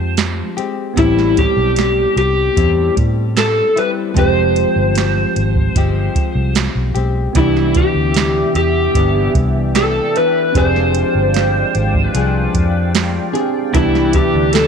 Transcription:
0.00 0.41 F2 medium
0.00 0.56 F3 medium
0.00 0.57 G#3 medium
0.00 0.91 G#3 medium
0.00 0.58 C4 medium
0.00 0.92 C4 medium
0.00 0.93 F4 medium
0.00 0.56 G4 medium
0.00 0.94 G4 medium
0.00 0.15 C5 medium
0.17 snare loud
0.17 closed hi-hat medium
0.57 0.98 G#3 soft
0.57 0.98 C4 medium
0.57 0.97 G4 medium
0.57 closed hi-hat medium
0.94 1.45 A1 loud
0.94 2.54 A2 medium
0.94 2.56 G3 medium
0.94 4.11 B3 medium
0.94 4.11 C4 soft
0.94 4.12 E4 medium
0.94 kick loud
0.94 closed hi-hat medium
0.98 2.57 C4 medium
0.98 1.39 E4 medium
0.98 2.57 E4 medium
0.98 4.13 G4 medium
1.19 snare soft
1.37 2.17 G4 medium
1.37 kick medium
1.37 closed hi-hat medium
1.57 2.04 B1 medium
1.76 snare loud
1.76 closed hi-hat medium
2.16 2.48 C2 medium
2.16 2.93 G4 medium
2.16 closed hi-hat medium
2.56 2.89 E2 medium
2.56 3.76 A2 medium
2.56 3.78 G3 medium
2.56 3.76 C4 medium
2.56 3.75 E4 medium
2.56 kick loud
2.56 closed hi-hat medium
2.96 3.60 A2 medium
2.96 kick loud
2.96 closed hi-hat medium
3.37 3.78 A4 medium
3.37 snare loud
3.37 closed hi-hat medium
3.76 4.14 G3 soft
3.76 4.15 C4 soft
3.76 4.16 E4 medium
3.76 3.89 B4 medium
3.76 closed hi-hat medium
4.14 4.64 F1 medium
4.14 5.75 F3 medium
4.14 7.30 G#3 medium
4.14 5.75 G#3 medium
4.14 7.31 C4 medium
4.14 5.77 C4 medium
4.14 7.32 F4 medium
4.14 kick loud
4.14 closed hi-hat medium
4.18 5.77 G4 medium
4.18 7.33 G4 medium
4.18 6.53 C5 medium
4.56 closed hi-hat medium
4.76 5.24 G1 medium
4.95 snare medium
4.95 closed hi-hat medium
5.36 5.68 G#1 medium
5.36 closed hi-hat medium
5.56 kick medium
5.76 6.08 G1 medium
5.76 6.95 F3 medium
5.76 6.96 G#3 medium
5.76 6.96 C4 medium
5.76 6.94 G4 medium
5.76 kick loud
5.76 closed hi-hat medium
6.15 muted fingered electric bass stroke soft
6.15 kick medium
6.15 closed hi-hat medium
6.35 6.67 C2 medium
6.55 snare loud
6.55 closed hi-hat medium
6.75 6.91 B1 medium
6.95 7.27 B1 medium
6.95 7.36 G#3 soft
6.95 7.36 C4 medium
6.95 7.35 G4 medium
6.95 closed hi-hat medium
7.33 7.83 C2 loud
7.33 8.94 C3 medium
7.33 8.95 E3 medium
7.33 10.50 B3 medium
7.33 10.51 B3 medium
7.33 10.50 D4 medium
7.33 10.51 E4 medium
7.33 7.77 E4 medium
7.33 14.67 D5 medium
7.33 10.51 E5 medium
7.33 14.67 G5 medium
7.33 kick loud
7.33 closed hi-hat medium
7.38 8.95 B3 medium
7.38 8.97 D4 medium
7.38 10.52 G4 medium
7.57 snare soft
7.75 8.52 G4 loud
7.75 kick loud
7.75 closed hi-hat medium
7.94 8.43 D2 medium
8.14 snare loud
8.14 closed hi-hat medium
8.55 8.87 E2 medium
8.55 9.32 G4 medium
8.55 closed hi-hat medium
8.95 9.27 G1 medium
8.95 10.15 C3 medium
8.95 10.15 E3 medium
8.95 10.15 B3 medium
8.95 10.15 D4 medium
8.95 kick loud
8.95 closed hi-hat medium
9.35 9.99 C2 medium
9.35 kick loud
9.35 closed hi-hat medium
9.75 10.17 A4 medium
9.75 snare loud
9.75 closed hi-hat medium
10.15 10.54 E3 soft
10.15 10.56 B3 soft
10.15 10.55 D4 medium
10.15 10.57 B4 medium
10.15 closed hi-hat medium
10.52 11.03 F1 loud
10.52 12.13 F3 medium
10.52 13.71 G#3 medium
10.52 13.29 C4 medium
10.52 12.15 C4 medium
10.52 13.30 D4 medium
10.52 13.31 G4 medium
10.52 13.71 F5 medium
10.52 kick loud
10.52 closed hi-hat medium
10.57 12.16 D4 medium
10.57 13.31 G#4 medium
10.57 12.15 G#4 medium
10.57 12.05 C5 medium
10.76 snare soft
10.95 closed hi-hat medium
11.15 11.63 G1 medium
11.34 snare loud
11.34 closed hi-hat medium
11.75 12.07 G#1 medium
11.75 closed hi-hat medium
11.94 kick medium
12.05 12.92 B4 medium
12.14 12.46 C2 medium
12.14 13.34 F3 medium
12.14 13.36 C4 medium
12.14 13.35 D4 medium
12.14 13.32 G#4 medium
12.14 closed hi-hat medium
12.54 13.18 F2 medium
12.54 kick medium
12.54 closed hi-hat medium
12.95 snare loud
12.95 closed hi-hat medium
13.33 13.73 C4 medium
13.33 13.75 C4 medium
13.33 13.73 D4 soft
13.33 13.75 D4 medium
13.33 13.74 G4 soft
13.33 13.74 G#4 medium
13.33 13.75 G#4 medium
13.33 closed hi-hat medium
13.72 14.22 C2 medium
13.72 14.67 C3 medium
13.72 14.67 E3 medium
13.72 14.67 B3 medium
13.72 14.67 D4 medium
13.72 14.16 E4 medium
13.72 14.67 E4 medium
13.72 14.67 B4 medium
13.72 14.67 E5 medium
13.72 kick loud
13.72 closed hi-hat medium
13.76 14.67 D4 medium
13.76 14.67 G4 medium
13.95 snare soft
14.13 14.51 G4 medium
14.13 kick medium
14.13 closed hi-hat medium
14.34 14.67 D2 medium
14.53 14.67 A4 loud
14.53 snare loud
14.53 closed hi-hat medium

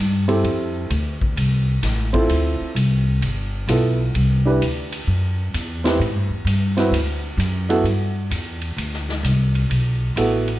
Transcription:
0.00 0.42 G2 medium
0.28 0.87 C4 medium
0.28 0.87 E4 medium
0.28 0.87 G4 medium
0.28 0.87 A4 medium
0.28 ride soft
0.44 0.89 F2 medium
0.44 ride soft
0.90 1.35 D2 medium
0.90 hi-hat pedal soft
0.90 ride medium
1.21 kick soft
1.36 1.81 C2 medium
1.36 ride medium
1.83 2.28 A1 medium
1.83 snare soft
1.83 hi-hat pedal medium
1.83 ride medium
2.13 2.72 C4 medium
2.13 2.73 E4 medium
2.13 2.73 F4 medium
2.13 2.73 A4 medium
2.13 kick soft
2.13 ride soft
2.29 2.58 D2 medium
2.29 ride medium
2.61 muted upright bass stroke soft
2.75 3.20 C2 medium
2.75 hi-hat pedal medium
2.75 ride medium
3.21 3.67 G1 medium
3.21 ride medium
3.67 4.13 B1 medium
3.67 3.96 B3 medium
3.67 3.97 E4 medium
3.67 3.96 F4 medium
3.67 3.97 A4 medium
3.67 hi-hat pedal medium
3.67 ride medium
4.14 4.60 C2 medium
4.14 ride medium
4.45 4.60 D4 medium
4.45 4.60 E4 medium
4.45 4.60 G4 medium
4.45 4.60 B4 medium
4.61 5.06 D2 medium
4.61 hi-hat pedal medium
4.61 ride medium
4.92 ride medium
5.07 5.52 F#2 medium
5.54 5.99 E2 medium
5.54 hi-hat pedal medium
5.54 ride medium
5.84 5.98 C4 medium
5.84 5.99 E4 medium
5.84 5.99 G4 medium
5.84 5.99 B4 medium
5.84 snare medium
5.84 ride soft
6.00 6.14 A2 medium
6.00 ride soft
6.14 6.29 G2 medium
6.29 6.44 E2 medium
6.45 6.90 G2 medium
6.45 hi-hat pedal medium
6.45 ride medium
6.77 6.91 C4 medium
6.77 6.91 E4 medium
6.77 6.91 F#4 medium
6.77 6.92 B4 medium
6.77 snare soft
6.77 ride soft
6.91 7.37 D2 medium
6.91 ride medium
7.37 7.83 F#2 medium
7.37 hi-hat pedal medium
7.37 ride medium
7.69 7.83 B3 medium
7.69 7.84 E4 medium
7.69 7.84 F#4 medium
7.69 7.84 A4 medium
7.69 ride soft
7.83 8.29 G2 medium
7.83 ride medium
8.31 8.76 E2 medium
8.31 hi-hat pedal medium
8.31 ride medium
8.61 ride soft
8.76 9.22 D2 medium
8.76 ride medium
8.94 snare soft
9.09 snare soft
9.23 9.68 C2 medium
9.23 hi-hat pedal medium
9.23 ride medium
9.55 ride soft
9.70 10.15 B1 medium
9.70 ride medium
10.16 10.59 A1 medium
10.16 10.44 B3 medium
10.16 10.44 E4 medium
10.16 10.45 F#4 medium
10.16 10.45 A4 medium
10.16 hi-hat pedal medium
10.16 ride medium
10.48 ride soft

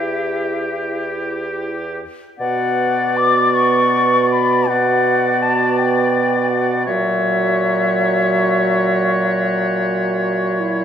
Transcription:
0.00 2.01 E2 soft
0.00 2.06 E4 soft
0.00 1.73 G4 soft
0.00 2.01 G4 soft
0.00 1.10 E5 soft
2.38 6.90 B2 soft
2.38 4.63 B3 soft
2.38 4.63 F#4 soft
2.38 4.63 D5 soft
2.38 3.18 F#5 medium
3.17 3.56 D6 medium
3.55 4.30 C#6 medium
4.31 4.70 B5 medium
4.68 6.85 B3 medium
4.68 6.85 F#4 soft
4.68 6.85 D5 medium
4.68 5.44 F#5 medium
5.42 5.80 A5 medium
5.79 6.52 G5 medium
6.51 6.85 F#5 medium
6.86 10.85 A#2 medium
6.86 10.85 F#3 medium
6.86 10.61 F#4 medium
6.86 10.85 C#5 soft
6.86 10.85 E5 medium
10.60 10.85 E4 medium

